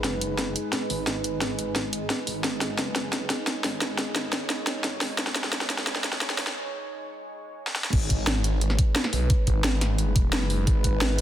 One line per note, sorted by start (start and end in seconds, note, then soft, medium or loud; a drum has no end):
0.00 7.89 G#3 medium
0.00 7.89 D#4 medium
0.00 7.89 G#4 medium
0.00 2.42 B4 medium
0.04 0.54 F#1 medium
0.04 snare medium
0.04 closed hi-hat medium
0.21 closed hi-hat medium
0.38 snare medium
0.38 closed hi-hat medium
0.56 closed hi-hat medium
0.73 snare medium
0.73 closed hi-hat medium
0.90 1.06 G#1 medium
0.90 open hi-hat medium
1.07 1.57 G#1 loud
1.07 snare medium
1.07 closed hi-hat medium
1.24 closed hi-hat medium
1.41 snare medium
1.41 closed hi-hat medium
1.59 1.74 G#1 medium
1.59 closed hi-hat medium
1.76 2.09 G#1 medium
1.76 snare medium
1.76 closed hi-hat medium
1.93 closed hi-hat medium
2.10 snare medium
2.10 closed hi-hat medium
2.27 2.43 G#1 medium
2.27 open hi-hat medium
2.44 2.77 G#1 loud
2.44 7.90 C#5 medium
2.44 snare medium
2.44 closed hi-hat medium
2.61 snare medium
2.61 closed hi-hat medium
2.79 3.29 F#1 medium
2.79 snare medium
2.79 closed hi-hat medium
2.96 snare medium
2.96 closed hi-hat medium
3.13 snare medium
3.13 closed hi-hat medium
3.30 snare medium
3.30 closed hi-hat medium
3.47 snare medium
3.47 closed hi-hat medium
3.64 3.80 G#1 loud
3.64 snare medium
3.64 open hi-hat medium
3.81 4.31 G#1 loud
3.81 snare medium
3.81 closed hi-hat medium
3.98 snare medium
3.98 closed hi-hat medium
4.16 snare medium
4.16 closed hi-hat medium
4.33 4.49 G#1 loud
4.33 snare medium
4.33 closed hi-hat medium
4.50 snare medium
4.50 closed hi-hat medium
4.67 snare medium
4.67 closed hi-hat loud
4.84 5.17 G#1 medium
4.84 snare medium
4.84 closed hi-hat medium
5.01 snare medium
5.01 open hi-hat medium
5.18 5.51 G#1 medium
5.18 snare medium
5.18 closed hi-hat medium
5.27 snare medium
5.36 snare loud
5.36 closed hi-hat medium
5.44 snare medium
5.53 6.03 F#1 medium
5.53 snare loud
5.53 closed hi-hat medium
5.61 snare medium
5.70 snare medium
5.70 closed hi-hat medium
5.78 snare medium
5.87 snare loud
5.87 closed hi-hat medium
5.96 snare medium
6.04 snare loud
6.04 closed hi-hat loud
6.13 snare medium
6.21 snare loud
6.21 closed hi-hat medium
6.30 snare medium
6.38 6.54 G#1 medium
6.38 snare loud
6.38 open hi-hat medium
6.47 snare medium
7.67 snare medium
7.76 snare medium
7.84 snare medium
7.93 8.77 G#1 loud
7.93 11.21 G#3 medium
7.93 11.21 D#4 medium
7.93 11.21 G#4 medium
7.93 11.21 B4 medium
7.93 kick loud
7.93 closed hi-hat medium
7.93 crash loud
8.10 kick medium
8.10 closed hi-hat loud
8.27 snare loud
8.27 closed hi-hat medium
8.44 closed hi-hat medium
8.61 closed hi-hat medium
8.70 snare soft
8.79 kick loud
8.79 closed hi-hat loud
8.96 snare loud
8.96 closed hi-hat medium
9.04 snare medium
9.13 9.29 B1 medium
9.13 open hi-hat medium
9.30 kick loud
9.30 closed hi-hat medium
9.47 10.31 G#1 loud
9.47 kick medium
9.47 closed hi-hat loud
9.64 snare loud
9.64 closed hi-hat medium
9.81 snare soft
9.81 closed hi-hat medium
9.98 closed hi-hat medium
10.16 kick loud
10.16 closed hi-hat loud
10.33 10.66 F#1 loud
10.33 snare loud
10.33 closed hi-hat medium
10.50 open hi-hat medium
10.67 11.21 G#1 loud
10.67 kick loud
10.67 closed hi-hat medium
10.84 kick medium
10.84 closed hi-hat medium
11.01 snare loud
11.01 closed hi-hat medium